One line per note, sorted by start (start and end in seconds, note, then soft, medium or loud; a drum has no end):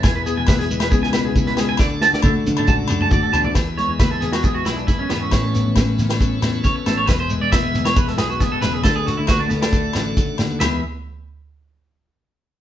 0.00 1.80 E2 medium
0.00 1.14 E4 medium
0.00 1.76 B4 medium
0.00 0.10 G#5 medium
0.00 kick loud
0.00 snare medium
0.00 low agogo medium
0.04 0.35 E1 loud
0.04 1.78 E4 medium
0.04 1.78 G#4 medium
0.04 shekere loud
0.15 0.21 B4 medium
0.26 0.91 B3 medium
0.26 0.32 G#4 medium
0.26 shekere medium
0.37 0.67 E1 medium
0.37 0.43 G#5 medium
0.47 1.77 E3 medium
0.47 0.54 B4 medium
0.47 kick medium
0.47 snare medium
0.47 high conga medium
0.47 low agogo medium
0.47 shekere loud
0.59 0.65 G#4 medium
0.59 snare soft
0.70 0.90 E1 loud
0.70 1.57 G#3 medium
0.70 high conga medium
0.70 shekere medium
0.80 0.87 B4 medium
0.80 snare medium
0.80 low agogo medium
0.91 1.80 C#2 medium
0.91 1.35 B3 medium
0.91 0.97 G#4 medium
0.91 kick medium
0.91 shekere loud
1.03 1.08 G#5 loud
1.03 snare soft
1.13 1.77 B2 medium
1.13 1.78 F#4 medium
1.13 1.20 B4 medium
1.13 snare medium
1.13 low agogo medium
1.13 shekere medium
1.25 1.31 G#4 medium
1.36 1.80 B3 medium
1.36 kick medium
1.36 high conga medium
1.36 shekere loud
1.47 1.53 B4 medium
1.47 snare soft
1.57 1.77 G#3 medium
1.57 1.64 G#4 medium
1.57 snare medium
1.57 low agogo medium
1.57 shekere medium
1.69 1.74 G#5 loud
1.77 2.10 D2 medium
1.77 3.56 D3 medium
1.77 3.54 F#4 medium
1.77 3.55 A4 medium
1.77 1.86 D5 medium
1.77 3.55 D5 medium
1.77 kick medium
1.77 snare medium
1.77 low agogo medium
1.77 shekere medium
2.01 2.67 F#4 medium
2.01 2.08 A5 medium
2.01 snare medium
2.01 shekere medium
2.13 2.43 D2 medium
2.13 2.20 D5 medium
2.13 snare soft
2.22 3.53 A3 medium
2.22 2.30 A4 medium
2.22 kick medium
2.22 high tom medium
2.22 high conga medium
2.22 low conga medium
2.22 low agogo medium
2.22 shekere loud
2.46 2.66 D2 medium
2.46 3.33 D4 medium
2.46 high tom medium
2.46 muted conga soft
2.46 low conga medium
2.46 shekere medium
2.57 2.63 A4 medium
2.57 mid tom medium
2.57 low agogo medium
2.67 3.08 C#2 loud
2.67 2.89 F#4 medium
2.67 2.74 A5 medium
2.67 kick medium
2.67 mid tom medium
2.67 muted conga soft
2.67 shekere loud
2.88 3.56 A2 medium
2.88 3.11 F#4 medium
2.88 mid tom medium
2.88 low agogo medium
2.88 shekere medium
3.00 3.07 A5 medium
3.00 mid tom medium
3.11 3.31 D2 medium
3.11 3.54 F#4 medium
3.11 3.18 D5 medium
3.11 kick medium
3.11 mid tom medium
3.11 high conga medium
3.11 shekere loud
3.23 3.29 A4 medium
3.33 3.54 E2 medium
3.33 3.54 D4 medium
3.33 3.39 A5 loud
3.33 floor tom medium
3.33 low agogo medium
3.33 shekere medium
3.44 3.50 D5 medium
3.44 floor tom medium
3.55 3.86 E2 medium
3.55 4.87 E2 medium
3.55 5.31 G#4 medium
3.55 5.31 B4 medium
3.55 5.31 E5 medium
3.55 kick medium
3.55 snare medium
3.55 low agogo medium
3.55 shekere medium
3.77 4.43 G#3 medium
3.77 3.89 C#5 loud
3.77 snare soft
3.77 muted conga soft
3.89 4.62 E2 loud
3.99 4.67 B3 medium
3.99 4.11 B4 medium
3.99 kick medium
3.99 snare medium
3.99 high conga medium
3.99 low agogo medium
3.99 shekere medium
4.11 4.21 A4 medium
4.21 5.98 E3 soft
4.21 4.32 G#4 medium
4.21 snare soft
4.21 high conga medium
4.21 shekere medium
4.32 4.43 F#4 medium
4.32 snare medium
4.32 low agogo medium
4.43 5.30 G#3 medium
4.43 4.55 G#4 medium
4.43 kick medium
4.43 shekere medium
4.55 4.65 F#4 medium
4.65 4.87 B1 medium
4.65 5.55 B3 medium
4.65 4.77 E4 medium
4.65 snare medium
4.65 low agogo medium
4.65 shekere medium
4.77 4.87 D4 medium
4.77 shekere soft
4.87 5.10 F#2 medium
4.87 4.99 E4 medium
4.87 kick medium
4.87 snare soft
4.87 high conga medium
4.87 shekere medium
4.99 5.10 C#4 medium
5.09 5.31 E2 medium
5.09 5.32 G#2 medium
5.09 5.21 B3 medium
5.09 snare medium
5.09 low agogo medium
5.09 shekere medium
5.21 6.28 C#4 medium
5.31 5.63 A1 medium
5.31 6.64 A2 medium
5.31 7.06 A4 medium
5.31 8.81 B4 medium
5.31 7.07 C#5 medium
5.31 kick medium
5.31 snare medium
5.31 low agogo medium
5.31 shekere medium
5.54 6.21 B3 medium
5.54 snare soft
5.54 muted conga soft
5.54 shekere medium
5.66 6.39 A1 loud
5.76 6.42 C#4 medium
5.76 kick medium
5.76 snare medium
5.76 high conga medium
5.76 low conga medium
5.76 low agogo medium
5.76 shekere medium
5.99 7.06 E3 medium
5.99 snare soft
5.99 high conga medium
5.99 shekere medium
6.09 snare medium
6.09 low agogo medium
6.21 6.85 B3 medium
6.21 kick medium
6.21 muted conga soft
6.21 shekere medium
6.42 6.63 E2 medium
6.42 7.07 C#4 medium
6.42 snare medium
6.42 low agogo medium
6.42 shekere medium
6.54 shekere soft
6.64 7.06 E2 medium
6.64 6.75 C#5 medium
6.64 kick medium
6.64 snare soft
6.64 high conga medium
6.64 shekere medium
6.76 muted clean electric guitar stroke medium
6.86 7.07 A1 medium
6.86 7.06 B3 medium
6.86 6.98 A4 medium
6.86 snare medium
6.86 muted conga soft
6.86 low agogo medium
6.86 shekere medium
6.97 7.09 C#5 loud
7.07 7.40 E1 medium
7.07 8.84 E2 medium
7.07 8.82 G#4 medium
7.07 7.20 B4 medium
7.07 8.82 E5 medium
7.07 kick medium
7.07 snare medium
7.07 low agogo medium
7.07 shekere medium
7.20 7.30 C5 medium
7.30 7.95 G#3 medium
7.30 muted conga soft
7.30 shekere loud
7.41 8.14 E1 loud
7.41 7.51 D5 loud
7.52 8.17 B3 medium
7.52 7.84 E5 loud
7.52 kick medium
7.52 snare medium
7.52 high conga loud
7.52 low agogo medium
7.52 shekere medium
7.74 8.82 E3 medium
7.74 snare soft
7.74 high conga medium
7.74 shekere medium
7.85 7.96 C#5 medium
7.85 snare medium
7.85 low agogo medium
7.96 8.82 G#3 medium
7.96 8.08 B4 medium
7.96 kick loud
7.96 shekere medium
8.08 8.18 A4 medium
8.08 snare soft
8.18 8.39 B1 medium
8.18 8.85 B3 medium
8.18 8.29 G#4 medium
8.18 snare medium
8.18 low agogo medium
8.18 shekere medium
8.30 8.40 F#4 medium
8.30 shekere soft
8.39 8.60 B2 medium
8.39 8.52 G#4 medium
8.39 kick medium
8.39 snare soft
8.39 high conga medium
8.39 shekere medium
8.52 8.61 A4 medium
8.61 8.83 E1 medium
8.61 8.84 C#3 medium
8.61 8.73 B4 loud
8.61 snare medium
8.61 low agogo medium
8.61 shekere medium
8.73 8.83 G#4 medium
8.82 9.15 D2 medium
8.82 10.38 D3 medium
8.82 8.95 A4 loud
8.82 10.59 A4 medium
8.82 10.59 D5 medium
8.82 10.59 F#5 medium
8.82 kick medium
8.82 snare medium
8.82 low agogo medium
8.82 shekere medium
8.96 9.06 G#4 medium
9.05 9.25 D4 medium
9.05 9.17 F#4 loud
9.05 snare soft
9.05 muted conga soft
9.05 shekere medium
9.17 9.91 D2 loud
9.17 9.28 E4 medium
9.26 9.71 D4 medium
9.26 9.40 F#4 loud
9.26 kick medium
9.26 snare medium
9.26 high conga medium
9.26 low conga medium
9.26 low agogo medium
9.26 shekere medium
9.40 9.49 D4 medium
9.48 10.57 A3 soft
9.48 9.61 B3 medium
9.48 snare soft
9.48 high conga medium
9.48 shekere loud
9.61 10.03 D4 medium
9.61 snare medium
9.61 low agogo medium
9.61 shekere soft
9.72 10.58 D4 medium
9.72 kick medium
9.72 shekere medium
9.93 10.15 A1 medium
9.93 10.58 F#4 medium
9.93 snare medium
9.93 low agogo medium
9.93 shekere medium
10.16 10.39 C#3 medium
10.16 kick medium
10.16 high conga medium
10.16 shekere medium
10.38 10.59 D#2 loud
10.38 10.61 D3 medium
10.38 snare medium
10.38 low agogo medium
10.38 shekere medium
10.50 shekere soft
10.59 10.81 E2 medium
10.59 10.81 E3 medium
10.59 10.82 G#3 medium
10.59 10.80 G#4 medium
10.59 10.80 B4 medium
10.59 10.81 B4 medium
10.59 10.81 E5 medium
10.59 10.80 E5 medium
10.59 muted clean electric guitar stroke medium
10.59 snare medium
10.59 floor tom medium
10.59 ride bell medium
10.59 muted conga medium
10.59 low agogo loud
10.59 shekere medium
10.63 10.82 B3 medium
10.63 10.82 G#4 medium